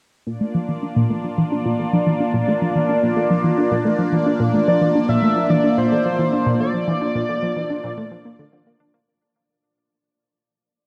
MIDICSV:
0, 0, Header, 1, 4, 480
1, 0, Start_track
1, 0, Tempo, 550459
1, 239, Time_signature, 4, 2, 24, 8
1, 9478, End_track
2, 0, Start_track
2, 0, Title_t, "Analog synth lead"
2, 0, Program_c, 0, 81
2, 4082, Note_on_c, 0, 74, 108
2, 4415, Note_off_c, 0, 74, 0
2, 4436, Note_on_c, 0, 76, 115
2, 4796, Note_on_c, 0, 74, 102
2, 4809, Note_off_c, 0, 76, 0
2, 5033, Note_off_c, 0, 74, 0
2, 5038, Note_on_c, 0, 72, 101
2, 5724, Note_off_c, 0, 72, 0
2, 5756, Note_on_c, 0, 74, 100
2, 7403, Note_off_c, 0, 74, 0
2, 9478, End_track
3, 0, Start_track
3, 0, Title_t, "Analog synth pad"
3, 0, Program_c, 1, 89
3, 235, Note_on_c, 1, 65, 68
3, 236, Note_on_c, 1, 62, 70
3, 237, Note_on_c, 1, 74, 81
3, 238, Note_on_c, 1, 58, 76
3, 7882, Note_off_c, 1, 65, 0
3, 7883, Note_off_c, 1, 58, 0
3, 7883, Note_off_c, 1, 62, 0
3, 7883, Note_off_c, 1, 74, 0
3, 9478, End_track
4, 0, Start_track
4, 0, Title_t, "Synth arpeggio sound"
4, 0, Program_c, 2, 84
4, 237, Note_on_c, 2, 46, 97
4, 307, Note_off_c, 2, 46, 0
4, 358, Note_on_c, 2, 57, 71
4, 427, Note_off_c, 2, 57, 0
4, 478, Note_on_c, 2, 53, 71
4, 520, Note_off_c, 2, 53, 0
4, 599, Note_on_c, 2, 52, 71
4, 640, Note_off_c, 2, 52, 0
4, 719, Note_on_c, 2, 62, 77
4, 760, Note_off_c, 2, 62, 0
4, 840, Note_on_c, 2, 46, 99
4, 908, Note_off_c, 2, 46, 0
4, 961, Note_on_c, 2, 57, 74
4, 1028, Note_off_c, 2, 57, 0
4, 1082, Note_on_c, 2, 53, 73
4, 1122, Note_off_c, 2, 53, 0
4, 1202, Note_on_c, 2, 52, 82
4, 1242, Note_off_c, 2, 52, 0
4, 1324, Note_on_c, 2, 62, 73
4, 1363, Note_off_c, 2, 62, 0
4, 1443, Note_on_c, 2, 46, 100
4, 1510, Note_off_c, 2, 46, 0
4, 1562, Note_on_c, 2, 57, 73
4, 1629, Note_off_c, 2, 57, 0
4, 1683, Note_on_c, 2, 53, 76
4, 1722, Note_off_c, 2, 53, 0
4, 1801, Note_on_c, 2, 52, 75
4, 1841, Note_off_c, 2, 52, 0
4, 1921, Note_on_c, 2, 62, 70
4, 1961, Note_off_c, 2, 62, 0
4, 2040, Note_on_c, 2, 46, 98
4, 2108, Note_off_c, 2, 46, 0
4, 2163, Note_on_c, 2, 57, 80
4, 2229, Note_off_c, 2, 57, 0
4, 2281, Note_on_c, 2, 53, 71
4, 2321, Note_off_c, 2, 53, 0
4, 2401, Note_on_c, 2, 52, 73
4, 2441, Note_off_c, 2, 52, 0
4, 2519, Note_on_c, 2, 62, 73
4, 2560, Note_off_c, 2, 62, 0
4, 2640, Note_on_c, 2, 46, 93
4, 2708, Note_off_c, 2, 46, 0
4, 2759, Note_on_c, 2, 57, 73
4, 2828, Note_off_c, 2, 57, 0
4, 2879, Note_on_c, 2, 53, 73
4, 2920, Note_off_c, 2, 53, 0
4, 2998, Note_on_c, 2, 52, 73
4, 3040, Note_off_c, 2, 52, 0
4, 3119, Note_on_c, 2, 62, 79
4, 3160, Note_off_c, 2, 62, 0
4, 3239, Note_on_c, 2, 46, 97
4, 3308, Note_off_c, 2, 46, 0
4, 3359, Note_on_c, 2, 57, 77
4, 3428, Note_off_c, 2, 57, 0
4, 3478, Note_on_c, 2, 53, 75
4, 3520, Note_off_c, 2, 53, 0
4, 3599, Note_on_c, 2, 52, 78
4, 3640, Note_off_c, 2, 52, 0
4, 3720, Note_on_c, 2, 62, 71
4, 3760, Note_off_c, 2, 62, 0
4, 3838, Note_on_c, 2, 46, 96
4, 3907, Note_off_c, 2, 46, 0
4, 3957, Note_on_c, 2, 57, 72
4, 4027, Note_off_c, 2, 57, 0
4, 4079, Note_on_c, 2, 53, 83
4, 4120, Note_off_c, 2, 53, 0
4, 4196, Note_on_c, 2, 52, 73
4, 4239, Note_off_c, 2, 52, 0
4, 4318, Note_on_c, 2, 62, 71
4, 4360, Note_off_c, 2, 62, 0
4, 4436, Note_on_c, 2, 46, 98
4, 4506, Note_off_c, 2, 46, 0
4, 4556, Note_on_c, 2, 57, 77
4, 4626, Note_off_c, 2, 57, 0
4, 4675, Note_on_c, 2, 53, 74
4, 4718, Note_off_c, 2, 53, 0
4, 4795, Note_on_c, 2, 52, 74
4, 4838, Note_off_c, 2, 52, 0
4, 4916, Note_on_c, 2, 62, 74
4, 4959, Note_off_c, 2, 62, 0
4, 5038, Note_on_c, 2, 46, 98
4, 5107, Note_off_c, 2, 46, 0
4, 5159, Note_on_c, 2, 57, 73
4, 5228, Note_off_c, 2, 57, 0
4, 5280, Note_on_c, 2, 53, 77
4, 5321, Note_off_c, 2, 53, 0
4, 5398, Note_on_c, 2, 52, 77
4, 5440, Note_off_c, 2, 52, 0
4, 5519, Note_on_c, 2, 62, 81
4, 5560, Note_off_c, 2, 62, 0
4, 5636, Note_on_c, 2, 46, 99
4, 5706, Note_off_c, 2, 46, 0
4, 5760, Note_on_c, 2, 57, 74
4, 5828, Note_off_c, 2, 57, 0
4, 5876, Note_on_c, 2, 53, 73
4, 5919, Note_off_c, 2, 53, 0
4, 5997, Note_on_c, 2, 52, 84
4, 6039, Note_off_c, 2, 52, 0
4, 6117, Note_on_c, 2, 62, 72
4, 6159, Note_off_c, 2, 62, 0
4, 6237, Note_on_c, 2, 46, 98
4, 6307, Note_off_c, 2, 46, 0
4, 6357, Note_on_c, 2, 57, 73
4, 6426, Note_off_c, 2, 57, 0
4, 6476, Note_on_c, 2, 53, 76
4, 6519, Note_off_c, 2, 53, 0
4, 6598, Note_on_c, 2, 52, 75
4, 6640, Note_off_c, 2, 52, 0
4, 6719, Note_on_c, 2, 62, 76
4, 6760, Note_off_c, 2, 62, 0
4, 6838, Note_on_c, 2, 46, 102
4, 6907, Note_off_c, 2, 46, 0
4, 6958, Note_on_c, 2, 57, 79
4, 7027, Note_off_c, 2, 57, 0
4, 7078, Note_on_c, 2, 53, 74
4, 7120, Note_off_c, 2, 53, 0
4, 7197, Note_on_c, 2, 58, 75
4, 7267, Note_off_c, 2, 58, 0
4, 7319, Note_on_c, 2, 50, 80
4, 7387, Note_off_c, 2, 50, 0
4, 7439, Note_on_c, 2, 50, 80
4, 7542, Note_off_c, 2, 50, 0
4, 7559, Note_on_c, 2, 58, 75
4, 7628, Note_off_c, 2, 58, 0
4, 7676, Note_on_c, 2, 62, 100
4, 7781, Note_off_c, 2, 62, 0
4, 7797, Note_on_c, 2, 58, 99
4, 7839, Note_off_c, 2, 58, 0
4, 9478, End_track
0, 0, End_of_file